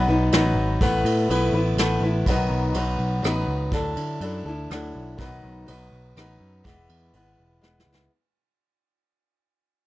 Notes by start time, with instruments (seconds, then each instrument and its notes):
0.08 picked electric bass B1, steel-string acoustic guitar F#3 B3 D#4 B4
0.32 picked electric bass A1, steel-string acoustic guitar F#3 B3 D#4 B4, snare, ride
0.55 picked electric bass G#1
0.81 picked electric bass A1, steel-string acoustic guitar A3 B3 E4 B4, kick, ride
1.04 picked electric bass A2, ride
1.29 picked electric bass B1, steel-string acoustic guitar A3 B3 E4 B4, ride
1.52 picked electric bass A1, steel-string acoustic guitar E4 B4
1.57 steel-string acoustic guitar B3
1.76 picked electric bass A1, steel-string acoustic guitar A3, snare, ride
1.80 steel-string acoustic guitar B3 E4 B4
2.00 picked electric bass A1, steel-string acoustic guitar B4
2.05 steel-string acoustic guitar B3 E4
2.26 picked electric bass B1, steel-string acoustic guitar B2 D#3 F#3 B3 D#4 B4, kick, ride
2.50 picked electric bass B1
2.74 picked electric bass B1, steel-string acoustic guitar F#3 B3 D#4 B4, ride
2.99 picked electric bass B1
3.23 picked electric bass A1, steel-string acoustic guitar F#3 B3 D#4 B4, cross-stick, ride
3.47 picked electric bass C#2
3.72 picked electric bass D2, steel-string acoustic guitar D3 F#3 D4 E4 A4, kick, ride
3.97 picked electric bass D3, ride
4.20 picked electric bass F#2, steel-string acoustic guitar F#3 D4 E4 A4, ride
4.45 picked electric bass D2, steel-string acoustic guitar E4 A4
4.49 steel-string acoustic guitar D4
4.70 picked electric bass D2, steel-string acoustic guitar F#3 D4 E4 A4, cross-stick, ride
4.95 picked electric bass B1
5.18 picked electric bass B1, steel-string acoustic guitar B2 D#3 F#3 B3 D#4 B4, kick, ride
5.44 picked electric bass B1
5.67 picked electric bass B1, steel-string acoustic guitar F#3 B3 D#4 B4, ride
5.92 picked electric bass B1
6.16 picked electric bass A1, steel-string acoustic guitar F#3 B3 D#4 B4, cross-stick, ride
6.40 picked electric bass F#2
6.64 picked electric bass E1, steel-string acoustic guitar E3 G#3 B3 E4 B4, kick, ride
6.89 picked electric bass E2, ride
7.13 picked electric bass G#1, steel-string acoustic guitar G#3 B3 E4 B4, ride
7.38 picked electric bass E1
7.61 steel-string acoustic guitar G#3 B3 E4 B4, snare
7.80 snare
7.86 picked electric bass C#2
7.94 snare